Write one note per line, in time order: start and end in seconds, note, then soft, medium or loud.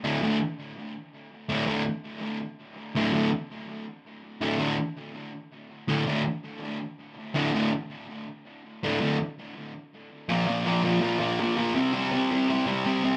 0.04 0.18 D2 loud
0.04 0.18 A2 medium
0.04 0.19 D3 loud
0.21 0.36 D2 medium
0.21 0.37 A2 medium
0.21 0.37 D3 loud
1.49 1.64 D2 medium
1.49 1.64 A2 loud
1.49 1.64 D3 loud
1.67 1.82 D2 medium
1.67 1.82 A2 medium
1.67 1.82 D3 medium
2.95 3.10 D2 medium
2.95 3.11 A2 loud
2.95 3.11 D3 loud
3.13 3.28 D2 medium
3.13 3.29 A2 loud
3.13 3.29 D3 loud
4.41 4.56 D2 medium
4.41 4.57 A2 medium
4.41 4.57 D3 loud
4.59 4.74 D2 medium
4.59 4.75 A2 medium
4.59 4.75 D3 loud
5.88 6.03 D2 loud
5.88 6.03 A2 loud
5.88 6.03 D3 loud
6.07 6.22 D2 medium
6.07 6.22 A2 medium
6.07 6.22 D3 loud
7.35 7.50 D2 loud
7.35 7.50 A2 loud
7.35 7.51 D3 loud
7.54 7.69 D2 medium
7.54 7.69 A2 loud
7.54 7.70 D3 loud
8.83 8.98 D2 medium
8.83 8.98 A2 loud
8.83 8.98 D3 loud
9.01 9.16 D2 medium
9.01 9.16 A2 medium
9.01 9.16 D3 loud
10.29 10.45 A#2 loud
10.29 10.46 F3 loud
10.29 10.46 A#3 loud
10.46 10.64 A#2 medium
10.46 10.65 F3 medium
10.46 10.66 A#3 loud
10.66 10.82 A#2 medium
10.66 10.83 F3 medium
10.66 10.83 A#3 loud
10.84 11.00 A#2 loud
10.84 11.00 F3 loud
10.84 11.01 A#3 loud
11.01 11.18 A#2 medium
11.01 11.18 F3 medium
11.01 11.19 A#3 medium
11.20 11.38 A#2 loud
11.20 11.39 F3 loud
11.20 11.39 A#3 loud
11.40 11.56 A#2 loud
11.40 11.56 F3 medium
11.40 11.57 A#3 medium
11.57 11.74 A#2 medium
11.57 11.74 F3 loud
11.57 11.75 A#3 loud
11.74 11.92 C3 loud
11.74 11.93 G3 loud
11.74 11.93 C4 loud
11.93 12.10 C3 medium
11.93 12.12 G3 medium
11.93 12.12 C4 medium
12.12 12.30 C3 medium
12.12 12.31 G3 medium
12.12 12.31 C4 loud
12.31 12.48 C3 loud
12.31 12.48 G3 loud
12.31 12.49 C4 loud
12.49 12.65 C3 medium
12.49 12.66 G3 medium
12.49 12.66 C4 loud
12.66 12.84 C3 loud
12.66 12.84 G3 loud
12.66 12.85 C4 loud
12.86 13.02 C3 medium
12.86 13.03 G3 medium
12.86 13.03 C4 loud
13.03 13.17 C3 medium
13.03 13.17 G3 loud
13.03 13.17 C4 loud